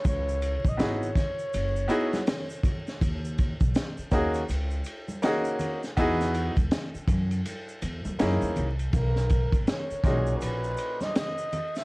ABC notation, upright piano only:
X:1
M:4/4
L:1/8
Q:"Swing 16ths" 1/4=81
K:B
V:1 name="Upright piano"
z2 [B,DEFG] z2 [B,DEFG] z2 | z3 [A,CDFG] z2 [A,CDFG] z | [B,DEFG] z4 z [A,CDEG] z | z3 [A,,CDFG]3 z2 |]